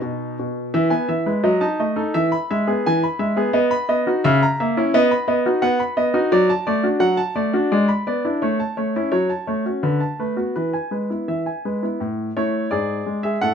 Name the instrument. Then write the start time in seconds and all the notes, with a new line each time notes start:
grand piano
Already playing: D#4
0.02 B2
0.39 B2
0.74 E3 E5
0.90 B3 G#5
1.08 E3 E5
1.26 G#3 B4
1.44 F#3 D#5
1.61 D#4 A5
1.79 A3 D#5
1.96 D#4 A4
2.14 E3 E5
2.32 B5
2.51 G#3 E5
2.67 B3 G#4
2.86 E3 G#5
3.04 B5
3.19 G#3 E5
3.37 B3 G#4
3.53 B3 D#5
3.71 B5
3.89 B3 D#5
4.06 D#4 F#4
4.24 C#3 E5
4.43 A#5
4.60 A#3 E5
4.77 C#4 E4
4.94 B3 D#5
5.11 B5
5.28 B3 D#5
5.46 D#4 F#4
5.62 B3 F#5
5.80 B5
5.97 B3 D#5
6.14 D#4 F#4
6.32 F#3 D5
6.49 A5
6.67 A3 D5
6.83 D4 F#4
7.00 F#3 F#5
7.17 A5
7.35 A3 D5
7.53 D4 F#4
7.72 G#3 D5
7.88 B5
8.07 B3 D5
8.25 D4 E4
8.42 A3 C#5
8.60 A5
8.77 A3 C#5
8.96 C#4 E4
9.12 F#3 C#5
9.30 A5
9.47 A3 C#5
9.66 C#4 F#4
9.83 D3 B4
10.00 A5
10.19 A3 B4
10.37 B3 F#4
10.56 E3 B4
10.73 G#5
10.91 G#3 B4
11.10 B3 E4
11.28 E3 E5
11.46 G#5
11.65 G#3 B4
11.83 B3 E4
12.00 A2
12.37 A3 E4 C#5
12.71 G#2 G#4 D5
13.06 G#3
13.23 G#4 E5
13.41 A2 A4 F#5